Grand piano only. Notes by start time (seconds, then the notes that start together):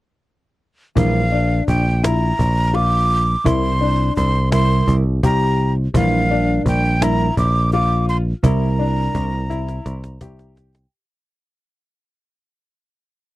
0.95 E3
1.32 D4
2.03 E4
2.74 F4
3.45 E4
3.81 D4
4.51 E4
5.24 G4
5.95 E3
6.31 D4
7.02 E4
7.73 F4
8.44 E4
8.79 D4
9.50 E4
10.22 G4